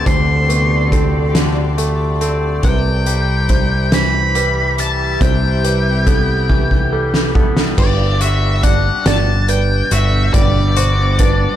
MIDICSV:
0, 0, Header, 1, 7, 480
1, 0, Start_track
1, 0, Key_signature, 1, "major"
1, 0, Tempo, 857143
1, 35, Time_signature, 6, 3, 24, 8
1, 6475, End_track
2, 0, Start_track
2, 0, Title_t, "Lead electric guitar"
2, 0, Program_c, 0, 29
2, 40, Note_on_c, 0, 84, 79
2, 1216, Note_off_c, 0, 84, 0
2, 1481, Note_on_c, 0, 79, 78
2, 2208, Note_on_c, 0, 83, 78
2, 2220, Note_off_c, 0, 79, 0
2, 2660, Note_off_c, 0, 83, 0
2, 2688, Note_on_c, 0, 81, 69
2, 2906, Note_off_c, 0, 81, 0
2, 2925, Note_on_c, 0, 79, 68
2, 4098, Note_off_c, 0, 79, 0
2, 4363, Note_on_c, 0, 74, 70
2, 4600, Note_off_c, 0, 74, 0
2, 4603, Note_on_c, 0, 76, 72
2, 4836, Note_on_c, 0, 78, 75
2, 4846, Note_off_c, 0, 76, 0
2, 5059, Note_off_c, 0, 78, 0
2, 5080, Note_on_c, 0, 81, 85
2, 5315, Note_off_c, 0, 81, 0
2, 5317, Note_on_c, 0, 79, 75
2, 5556, Note_on_c, 0, 76, 73
2, 5562, Note_off_c, 0, 79, 0
2, 5787, Note_off_c, 0, 76, 0
2, 5789, Note_on_c, 0, 74, 73
2, 6475, Note_off_c, 0, 74, 0
2, 6475, End_track
3, 0, Start_track
3, 0, Title_t, "Felt piano"
3, 0, Program_c, 1, 0
3, 35, Note_on_c, 1, 72, 59
3, 274, Note_on_c, 1, 59, 53
3, 275, Note_off_c, 1, 72, 0
3, 515, Note_off_c, 1, 59, 0
3, 515, Note_on_c, 1, 69, 60
3, 989, Note_off_c, 1, 69, 0
3, 997, Note_on_c, 1, 69, 56
3, 1231, Note_off_c, 1, 69, 0
3, 1239, Note_on_c, 1, 69, 58
3, 1478, Note_off_c, 1, 69, 0
3, 1480, Note_on_c, 1, 71, 63
3, 1958, Note_off_c, 1, 71, 0
3, 1958, Note_on_c, 1, 72, 57
3, 2190, Note_off_c, 1, 72, 0
3, 2198, Note_on_c, 1, 72, 62
3, 2438, Note_off_c, 1, 72, 0
3, 2441, Note_on_c, 1, 71, 59
3, 2919, Note_off_c, 1, 71, 0
3, 2921, Note_on_c, 1, 72, 76
3, 3159, Note_off_c, 1, 72, 0
3, 3159, Note_on_c, 1, 71, 57
3, 3397, Note_on_c, 1, 69, 61
3, 3398, Note_off_c, 1, 71, 0
3, 3869, Note_off_c, 1, 69, 0
3, 3878, Note_on_c, 1, 69, 59
3, 4109, Note_off_c, 1, 69, 0
3, 4117, Note_on_c, 1, 69, 65
3, 4356, Note_off_c, 1, 69, 0
3, 4356, Note_on_c, 1, 71, 70
3, 4835, Note_off_c, 1, 71, 0
3, 4835, Note_on_c, 1, 74, 61
3, 5071, Note_off_c, 1, 74, 0
3, 5079, Note_on_c, 1, 74, 66
3, 5313, Note_on_c, 1, 71, 64
3, 5317, Note_off_c, 1, 74, 0
3, 5788, Note_on_c, 1, 74, 74
3, 5793, Note_off_c, 1, 71, 0
3, 6029, Note_on_c, 1, 72, 62
3, 6030, Note_off_c, 1, 74, 0
3, 6270, Note_off_c, 1, 72, 0
3, 6270, Note_on_c, 1, 71, 66
3, 6475, Note_off_c, 1, 71, 0
3, 6475, End_track
4, 0, Start_track
4, 0, Title_t, "Ambient pad"
4, 0, Program_c, 2, 92
4, 0, Note_on_c, 2, 48, 66
4, 0, Note_on_c, 2, 67, 64
4, 0, Note_on_c, 2, 69, 60
4, 0, Note_on_c, 2, 74, 76
4, 1456, Note_off_c, 2, 48, 0
4, 1457, Note_off_c, 2, 74, 0
4, 1458, Note_off_c, 2, 67, 0
4, 1458, Note_off_c, 2, 69, 0
4, 1473, Note_on_c, 2, 76, 75
4, 1474, Note_on_c, 2, 67, 66
4, 4331, Note_off_c, 2, 76, 0
4, 4332, Note_off_c, 2, 67, 0
4, 4353, Note_on_c, 2, 47, 64
4, 4353, Note_on_c, 2, 62, 65
4, 4354, Note_on_c, 2, 55, 66
4, 6475, Note_off_c, 2, 47, 0
4, 6475, Note_off_c, 2, 55, 0
4, 6475, Note_off_c, 2, 62, 0
4, 6475, End_track
5, 0, Start_track
5, 0, Title_t, "Clean electric guitar"
5, 0, Program_c, 3, 27
5, 0, Note_on_c, 3, 57, 50
5, 0, Note_on_c, 3, 60, 51
5, 34, Note_on_c, 3, 50, 56
5, 269, Note_off_c, 3, 57, 0
5, 276, Note_on_c, 3, 57, 52
5, 512, Note_off_c, 3, 60, 0
5, 514, Note_on_c, 3, 60, 51
5, 746, Note_off_c, 3, 50, 0
5, 753, Note_on_c, 3, 50, 51
5, 990, Note_off_c, 3, 57, 0
5, 996, Note_on_c, 3, 57, 53
5, 1236, Note_off_c, 3, 60, 0
5, 1238, Note_on_c, 3, 60, 54
5, 1475, Note_off_c, 3, 50, 0
5, 1477, Note_off_c, 3, 57, 0
5, 1481, Note_on_c, 3, 48, 57
5, 1718, Note_on_c, 3, 55, 52
5, 2200, Note_on_c, 3, 52, 56
5, 2434, Note_off_c, 3, 55, 0
5, 2437, Note_on_c, 3, 55, 57
5, 2679, Note_off_c, 3, 48, 0
5, 2917, Note_on_c, 3, 48, 57
5, 3154, Note_off_c, 3, 55, 0
5, 3160, Note_on_c, 3, 55, 53
5, 3198, Note_off_c, 3, 60, 0
5, 3397, Note_on_c, 3, 59, 55
5, 3398, Note_off_c, 3, 52, 0
5, 3637, Note_on_c, 3, 52, 63
5, 3872, Note_off_c, 3, 55, 0
5, 3878, Note_on_c, 3, 55, 53
5, 4108, Note_off_c, 3, 59, 0
5, 4115, Note_on_c, 3, 59, 57
5, 4116, Note_off_c, 3, 48, 0
5, 4350, Note_off_c, 3, 55, 0
5, 4355, Note_off_c, 3, 52, 0
5, 4355, Note_off_c, 3, 59, 0
5, 4357, Note_on_c, 3, 55, 57
5, 4598, Note_on_c, 3, 66, 56
5, 4836, Note_on_c, 3, 62, 55
5, 5548, Note_off_c, 3, 66, 0
5, 5555, Note_on_c, 3, 66, 62
5, 5572, Note_off_c, 3, 55, 0
5, 5792, Note_on_c, 3, 55, 63
5, 6023, Note_off_c, 3, 66, 0
5, 6030, Note_on_c, 3, 66, 65
5, 6270, Note_off_c, 3, 62, 0
5, 6272, Note_on_c, 3, 62, 61
5, 6475, Note_off_c, 3, 55, 0
5, 6475, Note_off_c, 3, 62, 0
5, 6475, Note_off_c, 3, 66, 0
5, 6475, End_track
6, 0, Start_track
6, 0, Title_t, "Picked electric bass"
6, 0, Program_c, 4, 34
6, 36, Note_on_c, 4, 38, 58
6, 1455, Note_off_c, 4, 38, 0
6, 1476, Note_on_c, 4, 36, 68
6, 2894, Note_off_c, 4, 36, 0
6, 2916, Note_on_c, 4, 36, 64
6, 4333, Note_off_c, 4, 36, 0
6, 4356, Note_on_c, 4, 31, 74
6, 4984, Note_off_c, 4, 31, 0
6, 5076, Note_on_c, 4, 31, 80
6, 5494, Note_off_c, 4, 31, 0
6, 5553, Note_on_c, 4, 31, 70
6, 5762, Note_off_c, 4, 31, 0
6, 5791, Note_on_c, 4, 31, 75
6, 6419, Note_off_c, 4, 31, 0
6, 6475, End_track
7, 0, Start_track
7, 0, Title_t, "Drums"
7, 35, Note_on_c, 9, 36, 74
7, 36, Note_on_c, 9, 42, 56
7, 91, Note_off_c, 9, 36, 0
7, 92, Note_off_c, 9, 42, 0
7, 279, Note_on_c, 9, 42, 46
7, 335, Note_off_c, 9, 42, 0
7, 516, Note_on_c, 9, 36, 59
7, 518, Note_on_c, 9, 42, 50
7, 572, Note_off_c, 9, 36, 0
7, 574, Note_off_c, 9, 42, 0
7, 756, Note_on_c, 9, 38, 90
7, 756, Note_on_c, 9, 42, 66
7, 812, Note_off_c, 9, 38, 0
7, 812, Note_off_c, 9, 42, 0
7, 997, Note_on_c, 9, 42, 45
7, 1053, Note_off_c, 9, 42, 0
7, 1238, Note_on_c, 9, 42, 45
7, 1294, Note_off_c, 9, 42, 0
7, 1473, Note_on_c, 9, 42, 54
7, 1475, Note_on_c, 9, 36, 71
7, 1529, Note_off_c, 9, 42, 0
7, 1531, Note_off_c, 9, 36, 0
7, 1715, Note_on_c, 9, 42, 45
7, 1771, Note_off_c, 9, 42, 0
7, 1954, Note_on_c, 9, 42, 46
7, 1956, Note_on_c, 9, 36, 57
7, 2010, Note_off_c, 9, 42, 0
7, 2012, Note_off_c, 9, 36, 0
7, 2196, Note_on_c, 9, 38, 85
7, 2196, Note_on_c, 9, 42, 68
7, 2252, Note_off_c, 9, 38, 0
7, 2252, Note_off_c, 9, 42, 0
7, 2437, Note_on_c, 9, 42, 46
7, 2493, Note_off_c, 9, 42, 0
7, 2679, Note_on_c, 9, 42, 46
7, 2735, Note_off_c, 9, 42, 0
7, 2917, Note_on_c, 9, 36, 71
7, 2919, Note_on_c, 9, 42, 59
7, 2973, Note_off_c, 9, 36, 0
7, 2975, Note_off_c, 9, 42, 0
7, 3161, Note_on_c, 9, 42, 49
7, 3217, Note_off_c, 9, 42, 0
7, 3398, Note_on_c, 9, 36, 65
7, 3399, Note_on_c, 9, 42, 52
7, 3454, Note_off_c, 9, 36, 0
7, 3455, Note_off_c, 9, 42, 0
7, 3637, Note_on_c, 9, 36, 49
7, 3693, Note_off_c, 9, 36, 0
7, 3758, Note_on_c, 9, 36, 39
7, 3814, Note_off_c, 9, 36, 0
7, 3997, Note_on_c, 9, 38, 54
7, 4053, Note_off_c, 9, 38, 0
7, 4118, Note_on_c, 9, 36, 69
7, 4174, Note_off_c, 9, 36, 0
7, 4237, Note_on_c, 9, 38, 65
7, 4293, Note_off_c, 9, 38, 0
7, 4356, Note_on_c, 9, 36, 74
7, 4356, Note_on_c, 9, 49, 76
7, 4412, Note_off_c, 9, 36, 0
7, 4412, Note_off_c, 9, 49, 0
7, 4596, Note_on_c, 9, 42, 54
7, 4652, Note_off_c, 9, 42, 0
7, 4835, Note_on_c, 9, 36, 65
7, 4835, Note_on_c, 9, 42, 55
7, 4891, Note_off_c, 9, 36, 0
7, 4891, Note_off_c, 9, 42, 0
7, 5073, Note_on_c, 9, 38, 91
7, 5073, Note_on_c, 9, 42, 80
7, 5129, Note_off_c, 9, 38, 0
7, 5129, Note_off_c, 9, 42, 0
7, 5312, Note_on_c, 9, 42, 54
7, 5368, Note_off_c, 9, 42, 0
7, 5551, Note_on_c, 9, 42, 55
7, 5607, Note_off_c, 9, 42, 0
7, 5790, Note_on_c, 9, 42, 69
7, 5791, Note_on_c, 9, 36, 84
7, 5846, Note_off_c, 9, 42, 0
7, 5847, Note_off_c, 9, 36, 0
7, 6028, Note_on_c, 9, 42, 55
7, 6084, Note_off_c, 9, 42, 0
7, 6265, Note_on_c, 9, 42, 55
7, 6269, Note_on_c, 9, 36, 69
7, 6321, Note_off_c, 9, 42, 0
7, 6325, Note_off_c, 9, 36, 0
7, 6475, End_track
0, 0, End_of_file